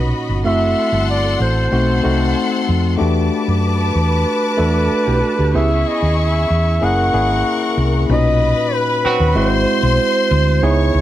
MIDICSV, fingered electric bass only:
0, 0, Header, 1, 3, 480
1, 0, Start_track
1, 0, Tempo, 636267
1, 334, Time_signature, 4, 2, 24, 8
1, 8307, End_track
2, 0, Start_track
2, 0, Title_t, "Fingered electric bass"
2, 0, Program_c, 0, 33
2, 0, Note_on_c, 0, 35, 73
2, 85, Note_off_c, 0, 35, 0
2, 220, Note_on_c, 0, 31, 72
2, 340, Note_off_c, 0, 31, 0
2, 340, Note_on_c, 0, 30, 98
2, 553, Note_off_c, 0, 30, 0
2, 697, Note_on_c, 0, 31, 82
2, 1020, Note_off_c, 0, 31, 0
2, 1057, Note_on_c, 0, 33, 83
2, 1273, Note_off_c, 0, 33, 0
2, 1299, Note_on_c, 0, 35, 88
2, 1514, Note_off_c, 0, 35, 0
2, 1546, Note_on_c, 0, 36, 74
2, 1758, Note_off_c, 0, 36, 0
2, 2029, Note_on_c, 0, 41, 86
2, 2240, Note_off_c, 0, 41, 0
2, 2268, Note_on_c, 0, 40, 87
2, 2480, Note_off_c, 0, 40, 0
2, 2626, Note_on_c, 0, 42, 82
2, 2947, Note_off_c, 0, 42, 0
2, 2983, Note_on_c, 0, 40, 82
2, 3197, Note_off_c, 0, 40, 0
2, 3464, Note_on_c, 0, 40, 76
2, 3678, Note_off_c, 0, 40, 0
2, 3828, Note_on_c, 0, 35, 74
2, 3933, Note_off_c, 0, 35, 0
2, 4067, Note_on_c, 0, 38, 75
2, 4172, Note_off_c, 0, 38, 0
2, 4187, Note_on_c, 0, 37, 89
2, 4400, Note_off_c, 0, 37, 0
2, 4545, Note_on_c, 0, 39, 83
2, 4866, Note_off_c, 0, 39, 0
2, 4906, Note_on_c, 0, 40, 82
2, 5119, Note_off_c, 0, 40, 0
2, 5148, Note_on_c, 0, 30, 85
2, 5360, Note_off_c, 0, 30, 0
2, 5384, Note_on_c, 0, 32, 76
2, 5597, Note_off_c, 0, 32, 0
2, 5866, Note_on_c, 0, 36, 89
2, 6078, Note_off_c, 0, 36, 0
2, 6106, Note_on_c, 0, 35, 106
2, 6425, Note_off_c, 0, 35, 0
2, 6941, Note_on_c, 0, 39, 79
2, 7046, Note_off_c, 0, 39, 0
2, 7059, Note_on_c, 0, 32, 105
2, 7272, Note_off_c, 0, 32, 0
2, 7417, Note_on_c, 0, 35, 99
2, 7523, Note_off_c, 0, 35, 0
2, 7780, Note_on_c, 0, 38, 96
2, 7991, Note_off_c, 0, 38, 0
2, 8018, Note_on_c, 0, 37, 106
2, 8229, Note_off_c, 0, 37, 0
2, 8255, Note_on_c, 0, 37, 103
2, 8307, Note_off_c, 0, 37, 0
2, 8307, End_track
3, 0, Start_track
3, 0, Title_t, "Muted fingered electric bass strokes"
3, 3707, Note_on_c, 9, 29, 45
3, 3783, Note_off_c, 9, 29, 0
3, 6829, Note_on_c, 9, 29, 45
3, 6905, Note_off_c, 9, 29, 0
3, 8307, End_track
0, 0, End_of_file